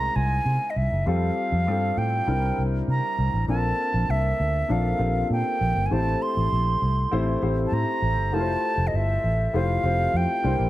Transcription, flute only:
Already playing: A#5
0.16 G#5
0.70 D#5
0.77 E5
1.07 F5
1.98 G5
2.90 A#5
3.49 A5
4.10 E5
4.71 F5
5.32 G5
5.86 G#5
5.93 A5
6.22 C6
7.67 A5
7.73 A#5
8.34 A5
8.87 D#5
8.96 E5
9.56 F5
10.17 G5

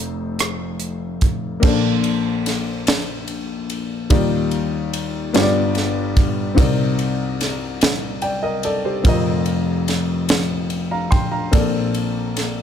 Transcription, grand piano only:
Already playing: F1 F2 A3 D#4 F4 C5
1.60 A#1 A#2 A#3 C#4 A4
1.64 D4 C5
4.10 D#2 D#3 G3 D#4 F4 D5
5.33 G1 G2 B3 F4 G4 C#5
5.42 D5
6.55 C2 C3 C4 D#4 A#4
6.60 D5
8.22 D5 G5
8.43 A#4 D#5
8.65 A4 D5
8.85 G4 C5
9.04 F1 F2 C4 F4 A#4
9.09 D#5
10.91 F5 A#5
11.11 G5 C6
11.31 F5 A#5
11.51 A#1 A#2 C4 A4 A#4 D5

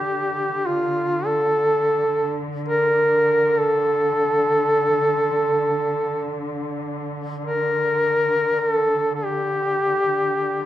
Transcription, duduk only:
Already playing: G4
0.66 F4
1.26 A4
2.68 A#4
3.59 A4
7.45 A#4
8.59 A#4
8.70 A4
9.15 A4
9.25 G4
10.62 G4

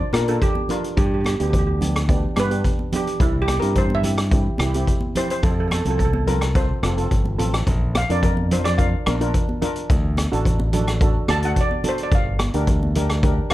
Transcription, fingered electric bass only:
0.13 A#2
0.97 G2
1.40 D2
2.37 G2
3.20 C2
3.63 G2
4.59 C2
5.43 F2
5.86 C2
6.83 F1
7.11 G1
7.39 A1
7.67 A#1
8.09 F2
9.07 A#1
9.90 D2
10.32 A1
11.29 D2
12.11 G1
12.54 D2

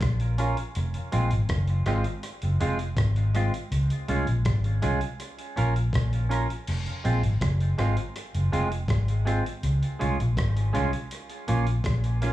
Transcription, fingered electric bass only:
0.01 A#1
0.76 F1
1.13 A#1
1.31 G#1
1.50 F#1
1.86 G#1
2.43 F#1
2.62 F1
2.97 G#1
3.71 C#2
4.09 C2
4.27 A#1
4.46 G#1
4.84 C2
5.58 A#1
5.94 A#1
6.68 F1
7.05 A#1
7.23 G#1
7.41 F#1
7.78 G#1
8.35 F#1
8.53 F1
8.89 G#1
9.63 C#2
10.02 C2
10.20 A#1
10.37 G#1
10.76 C2
11.49 A#1
11.84 A#1

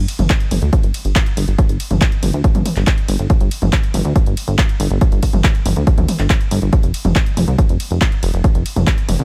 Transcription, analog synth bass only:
0.19 G1
0.51 G1
0.62 D2
0.83 G1
1.05 G1
1.37 G1
1.48 G1
1.69 G1
1.91 G1
2.23 G1
2.34 D2
2.55 G1
2.76 G1
3.09 G1
3.19 G1
3.41 G1
3.62 G1
3.94 G1
4.05 D2
4.26 G1
4.48 G1
4.80 G1
4.91 G1
5.12 G1
5.33 G1
5.66 G1
5.76 D2
5.98 D2
6.19 G1
6.51 G1
6.62 G1
6.83 F1
7.05 F1
7.37 F1
7.48 C2
7.69 F1
7.91 F1
8.23 F1
8.34 F1
8.55 F1
8.76 F1
9.09 F1
9.19 C2

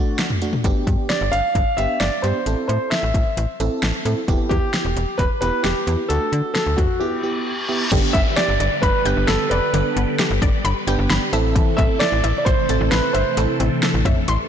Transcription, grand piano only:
Already playing: D5
1.09 D5
1.32 F5
1.77 E5
2.00 D5
2.22 C5
2.68 C5
2.90 E5
4.49 G4
5.18 B4
5.41 B4
5.63 G4
6.09 A4
6.54 A4
6.77 F#4
7.00 G4
8.13 E5
8.36 D5
8.82 B4
9.27 A4
9.50 B4
11.77 E5
11.99 D5
12.38 D5
12.45 C5
12.91 B4
13.13 C5

